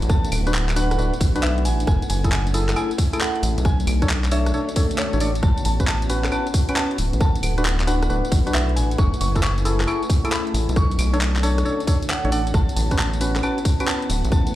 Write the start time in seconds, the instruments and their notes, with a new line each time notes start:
Already playing: string machine A3 B3 E4 F#4, ambient pad D4 B4 F#5
0.02 analog synth bass A1, closed hi-hat, tambourine
0.10 synth bell A5, kick, cross-stick, tambourine
0.25 closed hi-hat, tambourine
0.32 analog synth bass D1, open hi-hat, tambourine, claves
0.47 synth stab D4 F#4 B4, cross-stick, closed hi-hat, tambourine
0.54 clap, tambourine
0.69 clap, closed hi-hat, tambourine
0.76 synth stab D4 F#4 B4, synth bell F#5, open hi-hat, tambourine
0.91 cross-stick, closed hi-hat, tambourine
0.98 analog synth bass D1, synth stab D4 F#4 B4, tambourine
1.14 closed hi-hat, tambourine
1.21 analog synth bass A1, kick, open hi-hat, tambourine
1.36 analog synth bass B1, synth stab D4 F#4 B4, closed hi-hat, tambourine
1.43 synth bell E5, clap, tambourine
1.58 closed hi-hat
1.65 analog synth bass A1, synth bell G#5, open hi-hat, tambourine
1.80 closed hi-hat, tambourine
1.87 analog synth bass F#1, string machine A3 C#4 G#5, ambient pad E4, synth bell G#5, kick, cross-stick, tambourine
2.02 closed hi-hat, tambourine
2.10 analog synth bass F#1, synth bell G#5, open hi-hat, tambourine
2.24 synth stab E4 G#4 A4, kick, cross-stick, closed hi-hat, tambourine
2.31 ambient pad A3, synth bell G#5, clap, tambourine
2.47 closed hi-hat, tambourine
2.54 synth stab E4 G#4 A4, open hi-hat, tambourine
2.66 ambient pad G#5, cross-stick, clap, closed hi-hat, tambourine
2.76 synth stab E4 G#4 A4, synth bell G#5, tambourine, claves
2.91 closed hi-hat, tambourine
2.98 kick, open hi-hat, tambourine
3.13 synth stab E4 G#4 A4, closed hi-hat, tambourine, claves
3.21 synth bell F#5, clap, tambourine
3.36 closed hi-hat
3.43 analog synth bass A1, open hi-hat, tambourine
3.58 analog synth bass B1, closed hi-hat, tambourine
3.65 ambient pad D3, string machine A3 D4 F#4, synth bell G#5, kick, cross-stick, tambourine
3.80 closed hi-hat, tambourine
3.87 analog synth bass B1, open hi-hat, tambourine, claves
3.99 synth stab D4 A4 C#5, ambient pad C#5, kick, cross-stick, closed hi-hat, tambourine
4.09 clap, tambourine
4.24 clap, closed hi-hat, tambourine
4.31 synth stab D4 A4 C#5, synth bell E5, open hi-hat, tambourine
4.46 ambient pad A5, cross-stick, closed hi-hat, tambourine
4.54 synth stab D4 A4 C#5, tambourine, swell
4.69 closed hi-hat, tambourine
4.76 synth stab D4 A4 C#5, kick, open hi-hat, tambourine
4.91 closed hi-hat, tambourine
4.98 synth bell C#5, clap, tambourine
5.13 analog synth bass A1, synth stab D4 A4 C#5, closed hi-hat, tambourine
5.20 synth stab D4 A4 D5, synth bell C#5, open hi-hat, tambourine
5.35 closed hi-hat, tambourine
5.42 analog synth bass A1, string machine B3 E4, ambient pad C#4, synth bell A5, kick, cross-stick, tambourine
5.58 closed hi-hat, tambourine
5.65 analog synth bass A1, synth bell A5, open hi-hat, tambourine
5.70 ambient pad B4
5.80 synth stab C#4 F#4 B4, kick, cross-stick, closed hi-hat, tambourine
5.87 synth bell A5, clap, tambourine
6.02 closed hi-hat, tambourine
6.10 synth stab C#4 F#4 B4, open hi-hat, tambourine
6.14 ambient pad F#5
6.24 cross-stick, clap, closed hi-hat, tambourine
6.32 synth stab C#4 F#4 B4, synth bell A5, tambourine, claves
6.47 closed hi-hat, tambourine
6.54 kick, open hi-hat, tambourine
6.69 synth stab C#4 F#4 B4, closed hi-hat, tambourine, claves
6.76 synth bell A5, clap, tambourine
6.91 closed hi-hat
6.98 analog synth bass D1, string machine A3 B3, ambient pad D4, open hi-hat, tambourine
7.13 analog synth bass A1, closed hi-hat, tambourine
7.21 synth bell A5, kick, cross-stick, tambourine
7.36 closed hi-hat, tambourine
7.43 analog synth bass D1, open hi-hat, tambourine, claves
7.58 synth stab D4 F#4 B4, cross-stick, closed hi-hat, tambourine
7.65 clap, tambourine
7.80 clap, closed hi-hat, tambourine
7.87 synth stab D4 F#4 B4, synth bell F#5, open hi-hat, tambourine
8.03 cross-stick, closed hi-hat, tambourine
8.10 analog synth bass D1, synth stab D4 F#4 B4, tambourine
8.25 closed hi-hat, tambourine
8.32 analog synth bass A1, kick, open hi-hat, tambourine
8.47 analog synth bass B1, synth stab D4 F#4 B4, closed hi-hat, tambourine
8.54 synth bell E5, clap, tambourine
8.69 closed hi-hat
8.76 analog synth bass A1, synth bell G#5, open hi-hat, tambourine
8.91 closed hi-hat, tambourine
8.98 analog synth bass F#1, string machine C#4 G#5, ambient pad E4, synth bell C#6, kick, cross-stick, tambourine
9.09 ambient pad A3
9.14 closed hi-hat, tambourine
9.21 analog synth bass F#1, synth bell C#6, open hi-hat, tambourine
9.36 synth stab E4 G#4 A4, kick, cross-stick, closed hi-hat, tambourine
9.43 synth bell C#6, clap, tambourine
9.58 closed hi-hat, tambourine
9.65 synth stab E4 G#4 A4, ambient pad G#5, open hi-hat, tambourine
9.80 cross-stick, clap, closed hi-hat, tambourine
9.87 synth stab E4 G#4 A4, synth bell C#6, tambourine, claves
10.03 closed hi-hat, tambourine
10.10 kick, open hi-hat, tambourine
10.24 synth stab E4 G#4 A4, closed hi-hat, tambourine, claves
10.32 synth bell B5, clap, tambourine
10.47 closed hi-hat
10.54 analog synth bass A1, open hi-hat, tambourine
10.69 analog synth bass B1, closed hi-hat, tambourine
10.76 ambient pad D3, string machine A3 D4 F#4, synth bell C#6, kick, cross-stick, tambourine
10.91 closed hi-hat, tambourine
10.96 analog synth bass B1, ambient pad C#5 A5, open hi-hat, tambourine, claves
11.13 synth stab D4 A4 C#5, cross-stick, closed hi-hat, tambourine
11.21 clap, tambourine
11.36 clap, closed hi-hat, tambourine
11.43 synth stab D4 A4 C#5, synth bell A5, open hi-hat, tambourine
11.58 cross-stick, closed hi-hat, tambourine
11.65 synth stab D4 A4 C#5, tambourine
11.80 closed hi-hat, tambourine
11.87 synth stab D4 A4 C#5, kick, open hi-hat, tambourine
12.03 closed hi-hat, tambourine
12.10 synth bell F#5, clap, tambourine
12.25 analog synth bass A1, synth stab D4 A4 C#5, closed hi-hat
12.32 synth stab D4 A4 D5, synth bell F#5, open hi-hat, tambourine
12.47 closed hi-hat, tambourine
12.54 analog synth bass A1, string machine B3 E4, ambient pad C#4, synth bell A5, kick, cross-stick, tambourine
12.69 closed hi-hat, tambourine
12.76 analog synth bass A1, synth bell A5, open hi-hat, tambourine
12.91 synth stab C#4 F#4 B4, ambient pad F#5, kick, cross-stick, closed hi-hat, tambourine
12.96 ambient pad B4, synth bell A5, clap, tambourine
13.14 closed hi-hat, tambourine
13.21 synth stab C#4 F#4 B4, open hi-hat, tambourine
13.36 cross-stick, clap, closed hi-hat, tambourine
13.43 synth stab C#4 F#4 B4, synth bell A5, tambourine, claves
13.58 closed hi-hat, tambourine
13.65 kick, open hi-hat, tambourine
13.80 synth stab C#4 F#4 B4, closed hi-hat, tambourine, claves
13.88 synth bell A5, clap, tambourine
14.02 closed hi-hat
14.09 analog synth bass D1, string machine A3, ambient pad D4, open hi-hat, tambourine
14.25 analog synth bass A1, closed hi-hat, tambourine
14.32 synth bell A5, kick, cross-stick, tambourine
14.47 closed hi-hat, tambourine